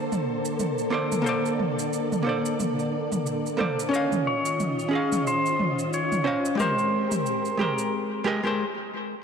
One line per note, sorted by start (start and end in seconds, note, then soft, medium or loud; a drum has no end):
0.00 3.88 D3 medium
0.00 0.87 A#3 medium
0.00 3.88 A#3 medium
0.00 0.88 A4 medium
0.00 3.88 A4 medium
0.00 0.89 C5 medium
0.00 1.23 C5 medium
0.00 0.91 D5 medium
0.12 mid tom medium
0.12 shaker soft
0.45 shaker medium
0.59 mid tom medium
0.59 shaker soft
0.78 shaker soft
0.90 1.21 A#3 medium
0.90 1.22 A4 medium
0.90 1.22 C5 medium
0.90 1.23 D5 medium
1.12 mid tom medium
1.12 shaker medium
1.22 2.20 A#3 medium
1.22 2.22 A4 medium
1.22 3.89 D5 medium
1.26 2.23 C5 medium
1.26 2.24 D5 medium
1.26 shaker soft
1.46 shaker soft
1.59 mid tom medium
1.79 shaker medium
1.93 shaker soft
2.12 mid tom medium
2.12 shaker soft
2.23 3.54 A#3 medium
2.23 3.55 A4 medium
2.23 3.56 C5 medium
2.29 3.57 D5 medium
2.46 shaker medium
2.60 mid tom medium
2.60 shaker soft
2.79 shaker soft
3.12 mid tom medium
3.12 shaker medium
3.26 shaker soft
3.46 shaker soft
3.57 3.88 A#3 medium
3.57 3.89 A4 medium
3.57 3.89 C5 medium
3.57 3.90 D5 medium
3.57 mid tom medium
3.79 shaker medium
3.89 6.57 D#3 medium
3.89 4.87 C#4 medium
3.89 6.57 F4 medium
3.89 4.89 C#5 medium
3.93 6.57 C#4 medium
3.93 6.57 D#5 medium
3.93 4.90 D#5 medium
3.93 4.91 F5 medium
3.93 shaker soft
4.12 mid tom medium
4.12 shaker soft
4.27 5.27 C#5 medium
4.45 shaker medium
4.60 mid tom medium
4.60 shaker soft
4.79 shaker soft
4.89 6.21 C#4 medium
4.89 6.22 G#4 medium
4.93 6.23 D#5 medium
4.93 6.24 F5 medium
5.12 mid tom medium
5.12 shaker medium
5.27 5.93 C5 medium
5.27 shaker soft
5.46 shaker soft
5.59 mid tom medium
5.79 shaker medium
5.93 6.56 C#5 medium
5.93 shaker soft
6.12 mid tom medium
6.12 shaker soft
6.24 6.55 C#4 medium
6.24 6.55 C5 medium
6.24 6.56 D#5 medium
6.24 6.57 F5 medium
6.45 shaker medium
6.55 7.54 G#3 medium
6.55 7.55 G4 medium
6.59 7.91 G#3 medium
6.59 7.91 C4 medium
6.59 7.91 G4 medium
6.59 7.56 A#4 medium
6.59 7.92 A#4 medium
6.59 7.61 C5 medium
6.59 7.57 C5 medium
6.59 mid tom medium
6.59 shaker medium
6.79 shaker soft
7.11 mid tom medium
7.11 shaker medium
7.26 shaker soft
7.45 shaker soft
7.57 8.22 G#3 medium
7.57 8.23 G4 medium
7.57 8.24 A#4 medium
7.57 8.24 C5 medium
7.57 mid tom medium
7.62 7.92 A#4 medium
7.78 shaker medium
8.24 8.40 G#3 medium
8.24 8.40 G4 medium
8.24 8.41 A#4 medium
8.24 8.41 D#5 loud
8.43 8.63 G#3 medium
8.43 8.64 G4 medium
8.43 8.64 A#4 medium
8.43 8.65 C5 medium